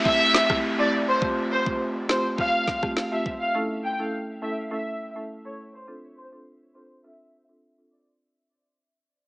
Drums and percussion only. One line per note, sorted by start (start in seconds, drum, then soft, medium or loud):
0.05 kick medium
0.34 snare loud
0.50 kick loud
0.50 cross-stick medium
1.22 kick loud
1.66 kick medium
2.09 snare loud
2.38 kick medium
2.67 kick medium
2.67 snare medium
2.83 kick medium
2.83 cross-stick medium
2.97 snare loud
3.26 kick medium